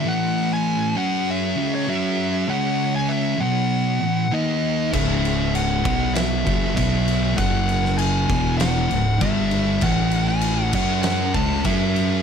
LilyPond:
<<
  \new Staff \with { instrumentName = "Lead electric guitar" } { \time 4/4 \key fis \dorian \tempo 4 = 98 fis''8. gis''8. fis''8 e''8. cis''16 e''4 | fis''8. gis''16 e''8 fis''4. dis''4 | e''4 fis''4 e''4 e''4 | fis''4 gis''4 fis''4 e''4 |
fis''8. gis''8. fis''8 fis''8 a''8 e''4 | }
  \new Staff \with { instrumentName = "String machine" } { \time 4/4 \key fis \dorian << { <a b'>4. <fis gis'>4 <a b'>8 <fis gis'>4 | cis''4. <b cis''>4 <a b'>8 dis'4 | cis'4. <b cis''>4 <cis' e''>8 <b cis''>4 | <fis gis'>4. <e fis'>4 <cis dis'>8 <g a'>4 |
<a b'>4. <fis gis'>4 <a b'>8 <fis gis'>4 | } \\ { e'4. cis'4 e'8 cis'4~ | cis'4. fis'4 e'8 ais'4 | gis'4. fis'4 gis'8 fis'4 | cis'4. b4 gis8 d'4 |
e'4. cis'4 e'8 cis'4 | } >> }
  \new Staff \with { instrumentName = "Distorted electric guitar" } { \clef bass \time 4/4 \key fis \dorian <a, e a>4. <fis cis' fis'>4 <cis gis cis'>8 <fis cis' fis'>4 | <cis gis cis'>4. <b, fis b>4 <a, e>8 <dis ais dis'>4 | <cis, gis, cis>4. <b, fis b>4 <fis, cis fis>8 <b, fis b>4 | <fis, cis fis>4. <e, b, e>4 <cis, gis,>8 <g, d g>4 |
<a, e a>4. <fis cis' fis'>4 <cis gis cis'>8 <fis cis' fis'>4 | }
  \new Staff \with { instrumentName = "Distorted electric guitar" } { \clef bass \time 4/4 \key fis \dorian <a, e a>4. <fis cis' fis'>4 <cis gis cis'>8 <fis cis' fis'>4 | <cis gis cis'>4. <b, fis b>4 <a, e>8 <dis ais dis'>4 | <cis, gis, cis>4. <b, fis b>4 <fis, cis fis>8 <b, fis b>4 | <fis, cis fis>4. <e, b, e>4 <cis, gis,>8 <g, d g>4 |
<a, e a>4. <fis cis' fis'>4 <cis gis cis'>8 <fis cis' fis'>4 | }
  \new Staff \with { instrumentName = "Fingered electric bass" } { \clef bass \time 4/4 \key fis \dorian r1 | r1 | cis,,4. b,,4 fis,,8 b,,4 | fis,,4. e,,4 cis,,8 g,,4 |
a,,4. fis,4 cis,8 fis,4 | }
  \new DrumStaff \with { instrumentName = "Drums" } \drummode { \time 4/4 r4 r4 r4 r4 | r4 r4 r4 r4 | <cymc bd>8 cymc8 cymc8 <cymc bd>8 <cymc sn>8 <cymc bd>8 <cymc bd>8 cymc8 | <cymc bd>8 cymc16 sn16 cymc8 <cymc bd>8 <cymc sn>8 cymc8 <cymc bd>8 cymc8 |
<cymc bd>8 cymc8 cymc8 <cymc bd>8 <cymc sn>8 <cymc bd>8 <cymc bd>8 cymc8 | }
>>